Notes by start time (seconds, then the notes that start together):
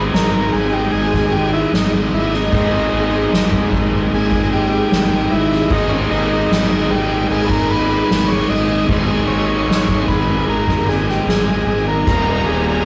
Already playing: D#2 G#2 A#2 D#3 G#3 C4 D#4 D#5
0.13 G#1 A#4, snare, ride
0.53 G#1 G#4, ride
0.72 G4
0.92 G#1 G#4, ride
1.13 kick, snare
1.32 G4, ride
1.53 E4
1.72 G#1 D#4, snare, ride
2.12 G#1 E4, ride
2.33 D#4, snare
2.52 G#1 G#2 D#3 G#3 C4 D#4, kick, ride
2.92 G#1, ride
3.32 G#1, snare, ride
3.52 kick
3.71 G#1, kick, ride
4.12 G#1 G#4, ride
4.32 kick
4.52 G4, ride
4.91 G#1, snare, ride
5.30 G#1 E4, ride
5.52 snare
5.70 G#1 G#2 D#3 G#3 C4 D#4, kick, ride
5.89 C#4
6.10 G#1 D#4, ride
6.50 G#1, snare, ride
6.70 D#4
6.90 G#1 G4, ride
7.30 G#1 G#4, ride
7.45 B4
7.49 A#4, kick
7.69 B4, ride
8.10 G#1, snare, ride
8.28 C#5
8.49 G#1 D#5, ride
8.89 G#1 G#2 D#3 G#3 C4 D#4, kick, ride
9.27 G#1 C#5, ride
9.67 G#1, snare, ride
9.88 kick
10.08 G#1 B4, kick, ride
10.47 G#1 A#4, ride
10.68 kick, snare
10.88 G#4, snare, ride
11.09 G4, snare
11.26 G#1 G#4, snare, ride
11.66 G#1 G#4, ride
11.88 A#4
12.07 D#1 D#2 A#2 D#3 G3 A#3 D#4 G4 D#5 A#5, kick, ride, tambourine
12.46 D#1 G#4, ride
12.69 G#4